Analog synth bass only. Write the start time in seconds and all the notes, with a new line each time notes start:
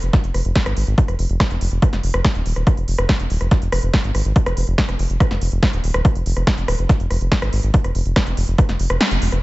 0.03 F1
0.24 F1
0.34 F1
0.45 F1
0.66 G#1
0.77 G#1
0.87 G#1
1.08 F1
1.19 F1
1.29 F1
1.51 F1
1.61 F1
1.72 F1
1.93 F1
2.03 F1
2.14 F1
2.35 D#1
2.46 D#1
2.56 D#1
2.77 F1
2.88 F1
2.99 F1
3.20 F1
3.30 D#1
3.41 F1
3.62 F1
3.72 F1
3.83 F1
4.04 G#1
4.15 G#1
4.25 G#1
4.46 F1
4.57 F1
4.68 F1
4.89 F1
4.99 F1
5.10 F1
5.31 F1
5.42 F1
5.52 F1
5.73 D#1
5.84 D#1
5.94 D#1
6.15 F1
6.26 F1
6.37 F1
6.58 F1
6.68 D#1
6.79 F1
7.00 F1
7.11 F1
7.21 F1
7.42 G#1
7.53 G#1
7.63 G#1
7.84 F1
7.95 F1
8.06 F1
8.27 F1
8.37 F1
8.48 F1
8.69 F1
8.80 F1
8.90 F1
9.11 F1
9.22 F1
9.32 F1